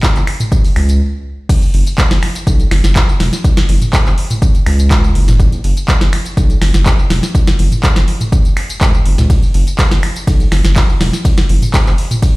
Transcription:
0.03 kick, clap, closed hi-hat, tambourine
0.16 sub bass F#1, clap, closed hi-hat, tambourine
0.27 finger snap, open hi-hat
0.40 closed hi-hat, mid tom, tambourine
0.52 kick, closed hi-hat, tambourine
0.65 open hi-hat, tambourine
0.76 sub bass C#2, finger snap, open hi-hat
0.89 closed hi-hat, tambourine
1.49 kick, closed hi-hat, crash, tambourine
1.62 closed hi-hat, tambourine
1.74 sub bass F#1, open hi-hat
1.87 closed hi-hat, tambourine
1.98 kick, clap, closed hi-hat, tambourine
2.11 sub bass F#1, snare, tambourine
2.23 finger snap, open hi-hat
2.35 closed hi-hat, tambourine
2.47 sub bass B1, kick, closed hi-hat, tambourine
2.60 closed hi-hat, tambourine
2.71 sub bass F#1, finger snap, snare, open hi-hat
2.84 sub bass F#1, snare, closed hi-hat, tambourine
2.96 kick, clap, closed hi-hat, tambourine
3.09 tambourine
3.20 sub bass E1, snare, open hi-hat
3.33 snare, closed hi-hat, tambourine
3.44 kick, closed hi-hat, tambourine
3.57 snare, closed hi-hat, tambourine
3.69 sub bass F#1, open hi-hat
3.82 closed hi-hat, mid tom, tambourine
3.93 kick, clap, closed hi-hat, tambourine
4.06 sub bass F#1, clap, tambourine
4.18 open hi-hat
4.30 closed hi-hat, mid tom, tambourine
4.42 kick, closed hi-hat, tambourine
4.55 closed hi-hat, tambourine
4.66 sub bass C#2, finger snap, open hi-hat
4.79 closed hi-hat, tambourine
4.91 kick, clap, closed hi-hat, mid tom, tambourine
5.04 tambourine
5.15 sub bass F#1, open hi-hat
5.28 snare, closed hi-hat, mid tom, tambourine
5.40 kick, closed hi-hat, tambourine
5.52 closed hi-hat, tambourine
5.64 sub bass F#1, open hi-hat
5.77 closed hi-hat, tambourine
5.88 kick, clap, closed hi-hat, tambourine
6.01 sub bass F#1, snare, tambourine
6.13 finger snap, open hi-hat
6.26 closed hi-hat, tambourine
6.37 sub bass B1, kick, closed hi-hat, tambourine
6.50 closed hi-hat, tambourine
6.62 sub bass F#1, finger snap, snare, open hi-hat
6.74 sub bass F#1, snare, closed hi-hat, tambourine
6.86 kick, clap, closed hi-hat, tambourine
6.99 tambourine
7.10 sub bass E1, snare, open hi-hat
7.23 snare, closed hi-hat, tambourine
7.35 kick, closed hi-hat, tambourine
7.47 snare, closed hi-hat, tambourine
7.59 sub bass F#1, open hi-hat
7.72 closed hi-hat, mid tom, tambourine
7.83 kick, clap, closed hi-hat, tambourine
7.96 sub bass F#1, snare, clap, closed hi-hat, tambourine
8.08 open hi-hat
8.21 closed hi-hat, mid tom, tambourine
8.32 kick, closed hi-hat, tambourine
8.45 closed hi-hat, tambourine
8.57 finger snap, open hi-hat
8.70 closed hi-hat, tambourine
8.81 sub bass C#2, kick, clap, closed hi-hat, mid tom, tambourine
8.94 tambourine
9.05 sub bass F#1, open hi-hat
9.18 sub bass C#2, snare, closed hi-hat, mid tom, tambourine
9.30 kick, closed hi-hat, ride, tambourine
9.43 closed hi-hat, tambourine
9.54 sub bass F#1, open hi-hat
9.67 closed hi-hat, tambourine
9.79 kick, clap, closed hi-hat, ride, tambourine
9.91 sub bass F#1, snare, tambourine
10.03 finger snap, open hi-hat
10.16 closed hi-hat, tambourine
10.27 sub bass B1, kick, closed hi-hat, ride, tambourine
10.40 closed hi-hat, tambourine
10.52 sub bass F#1, finger snap, snare, open hi-hat
10.65 sub bass F#1, snare, closed hi-hat, tambourine
10.76 kick, clap, closed hi-hat, ride, tambourine
10.90 tambourine
11.01 sub bass E1, snare, open hi-hat
11.13 snare, closed hi-hat, tambourine
11.25 kick, closed hi-hat, ride, tambourine
11.38 snare, closed hi-hat, tambourine
11.49 sub bass F#1, open hi-hat
11.62 closed hi-hat, mid tom, tambourine
11.74 kick, clap, closed hi-hat, ride, tambourine
11.86 sub bass F#1, clap, tambourine
11.98 open hi-hat
12.11 closed hi-hat, mid tom, tambourine
12.22 kick, closed hi-hat, ride, tambourine

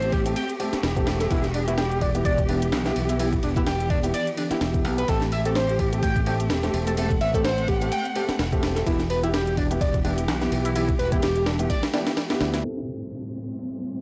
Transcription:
Already playing: fingered electric bass A1, string section A3 C4 G4, analog synth lead C5
0.02 closed hi-hat
0.12 analog synth lead G4, kick, ride
0.26 grand piano A3 C4 G4, closed hi-hat, ride
0.36 analog synth lead G5, closed hi-hat, ride
0.49 closed hi-hat
0.60 grand piano A3 C4 G4, analog synth lead G4, ride
0.73 muted fingered electric bass stroke, snare, closed hi-hat
0.83 fingered electric bass E1, snare, closed hi-hat, ride
0.96 grand piano A3 C4 G4, kick, closed hi-hat
1.07 snare, ride
1.20 analog synth lead A4, snare, closed hi-hat
1.30 fingered electric bass E1, string section E3 B3, grand piano B3 E4 G4, analog synth lead E4, kick, closed hi-hat, ride
1.44 snare, closed hi-hat
1.54 analog synth lead D4, ride
1.67 grand piano B3 E4 G4, analog synth lead E4, closed hi-hat
1.78 analog synth lead G4, snare, closed hi-hat, ride
1.91 closed hi-hat
2.01 analog synth lead D4, kick, ride
2.15 grand piano B3 E4 G4, closed hi-hat
2.25 analog synth lead D5, kick, closed hi-hat, ride
2.38 kick, closed hi-hat
2.49 grand piano B3 E4 G4, analog synth lead D4, ride
2.62 closed hi-hat
2.72 fingered electric bass B1, snare, closed hi-hat, ride
2.86 grand piano B3 E4 G4, snare, closed hi-hat
2.96 fingered electric bass B1, ride
3.09 analog synth lead E4, closed hi-hat, ride
3.19 grand piano B3 E4 G4, analog synth lead E4, closed hi-hat, ride
3.33 kick, closed hi-hat
3.43 fingered electric bass E1, analog synth lead D4, ride
3.56 grand piano B3 E4 G4, analog synth lead E4, kick, closed hi-hat
3.67 analog synth lead G4, snare, closed hi-hat, ride
3.80 closed hi-hat
3.90 analog synth lead D4, kick, ride
4.03 grand piano B3 E4 G4, closed hi-hat, ride
4.14 analog synth lead D5, closed hi-hat, ride
4.27 closed hi-hat
4.37 analog synth lead D4, ride
4.51 grand piano B3 E4 G4, analog synth lead E4, muted fingered electric bass stroke, snare, closed hi-hat
4.61 fingered electric bass E1, grand piano B3 E4 G4, snare, closed hi-hat, ride
4.74 kick, closed hi-hat
4.84 fingered electric bass B1, grand piano B3 E4 G4, ride
4.98 analog synth lead B4, closed hi-hat
5.08 fingered electric bass A1, string section A3 C4 G4, grand piano A3 C4 G4, analog synth lead A4, kick, closed hi-hat, ride
5.21 snare, closed hi-hat
5.32 analog synth lead E5, ride
5.45 grand piano A3 C4 G4, analog synth lead A4, closed hi-hat
5.55 analog synth lead C5, snare, closed hi-hat, ride
5.69 closed hi-hat
5.79 analog synth lead G4, kick, ride
5.93 grand piano A3 C4 G4, closed hi-hat
6.03 analog synth lead G5, kick, closed hi-hat, ride
6.16 kick, closed hi-hat
6.26 grand piano A3 C4 G4, analog synth lead G4, ride
6.40 closed hi-hat
6.50 fingered electric bass E1, snare, closed hi-hat, ride
6.63 grand piano A3 C4 G4, snare, closed hi-hat
6.74 fingered electric bass E1, ride
6.87 analog synth lead A4, closed hi-hat, ride
6.97 grand piano A3 C4 G4, analog synth lead A4, string section F#5, closed hi-hat, ride
7.11 kick, closed hi-hat
7.21 fingered electric bass A1, analog synth lead E5, ride
7.34 grand piano A3 C4 G4, analog synth lead A4, kick, closed hi-hat
7.45 analog synth lead C5, snare, closed hi-hat, ride
7.58 closed hi-hat
7.68 analog synth lead G4, kick, ride
7.81 grand piano A3 C4 G4, closed hi-hat, ride
7.92 analog synth lead G5, closed hi-hat, ride
8.05 closed hi-hat
8.15 grand piano A3 C4 G4, analog synth lead G4, ride
8.28 muted fingered electric bass stroke, snare, closed hi-hat
8.39 fingered electric bass E1, snare, closed hi-hat, ride
8.52 grand piano A3 C4 G4, kick, closed hi-hat
8.63 snare, ride
8.76 analog synth lead A4, snare, closed hi-hat
8.86 fingered electric bass E1, string section E3 B3 G4, grand piano B3 E4 G4, analog synth lead E4, kick, closed hi-hat, ride
9.00 snare, closed hi-hat
9.10 analog synth lead B4, ride
9.23 grand piano B3 E4 G4, analog synth lead E4, closed hi-hat
9.34 analog synth lead G4, snare, closed hi-hat, ride
9.47 closed hi-hat
9.57 analog synth lead D4, kick, ride
9.70 grand piano B3 E4 G4, closed hi-hat
9.81 analog synth lead D5, kick, closed hi-hat, ride
9.94 kick, closed hi-hat
10.04 grand piano B3 E4 G4, analog synth lead D4, ride
10.18 closed hi-hat
10.28 fingered electric bass B1, snare, closed hi-hat, ride
10.41 grand piano B3 E4 G4, snare, closed hi-hat
10.52 fingered electric bass B1, ride
10.65 analog synth lead E4, closed hi-hat, ride
10.75 string section A3, grand piano B3 E4 G4, analog synth lead E4, closed hi-hat, ride
10.89 kick, closed hi-hat
10.99 fingered electric bass E1, analog synth lead B4, ride
11.12 grand piano B3 E4 G4, analog synth lead E4, kick, closed hi-hat
11.22 analog synth lead G4, snare, closed hi-hat, ride
11.36 closed hi-hat
11.46 analog synth lead D4, snare, ride
11.59 grand piano B3 E4 G4, closed hi-hat
11.70 analog synth lead D5, kick, closed hi-hat, ride
11.83 snare, closed hi-hat, ride
11.94 grand piano B3 E4 G4, analog synth lead D4, snare, ride
12.07 snare, closed hi-hat, ride
12.17 snare, closed hi-hat, ride
12.30 grand piano B3 E4 G4, snare, closed hi-hat, ride
12.41 fingered electric bass D2, snare, ride
12.54 analog synth lead E4, snare, closed hi-hat, ride
12.64 string section A2 G3 C4, grand piano C4 G4 A4, ride, downlifter
12.77 snare
12.88 ride
13.11 ride
13.35 ride
13.59 ride
13.82 ride

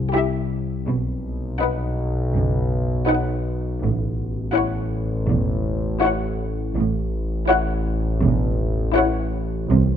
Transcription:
Already playing: synth drone C2
0.15 viola section E4, violin section G4 E5
0.87 synth drone B1, double bass section B1, cello section B2
1.60 viola section D#4, violin section B4 F#5
2.35 double bass section F#1, cello section F#2
3.08 viola section D#4, violin section B4 F#5
3.82 synth drone A1, double bass section A1, cello section A2
4.55 viola section E4, violin section C#5 F#5
5.28 double bass section E1, cello section E2
6.02 viola section E4, violin section C#5 F#5
6.75 double bass section A1, synth drone A1, cello section A2
7.49 viola section E4, violin section C#5 F#5
8.23 double bass section E1, cello section E2
8.95 viola section E4, violin section C#5 F#5
9.69 synth drone C2, double bass section C2, cello section C3

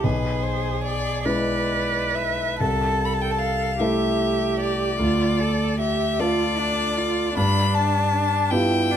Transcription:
0.04 grand piano B1, cello G#4, violin B4
0.43 violin C5
0.83 violin D5
1.25 grand piano G#3 E4 B4, cello B4, violin D5
2.15 violin E5
2.59 grand piano C2, cello A4, violin A5
3.05 violin B5
3.13 violin A5
3.21 violin G5
3.31 violin A5
3.39 violin F5
3.80 grand piano A3 E4 A4, cello G4, violin E5
4.60 violin D5
4.99 grand piano D2, cello F4
5.40 cello A4
5.80 cello G4, violin E5
6.19 grand piano A3 F4 A4, cello F4, violin D5
6.58 cello D4
6.98 cello F4
7.36 grand piano G2, cello D4, violin B5
7.74 violin A5
8.51 grand piano B3 F4 G4, cello E4, violin G5
8.91 cello D4

